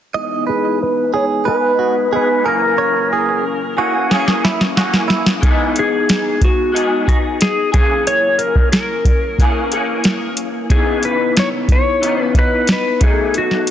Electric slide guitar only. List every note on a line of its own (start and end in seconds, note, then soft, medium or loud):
0.49 0.79 G#4 medium
0.83 1.15 B4 medium
1.15 1.24 C#5 medium
1.48 2.15 B4 medium
2.16 2.48 B4 medium
2.48 3.75 A#4 medium
5.79 6.45 G#4 medium
6.44 7.07 F#4 medium
7.09 7.17 F#4 medium
7.42 7.72 G#4 medium
7.74 8.08 G#4 medium
8.07 8.41 C#5 medium
8.38 8.71 A#4 medium
8.72 10.33 A#4 medium
10.71 11.05 G#4 medium
11.05 11.35 B4 medium
11.39 11.48 C#5 medium
11.72 12.22 C#5 medium
12.22 12.38 B4 medium
12.39 12.71 B4 medium
12.72 13.05 B4 medium
13.04 13.34 G#4 medium
13.38 13.71 F#4 medium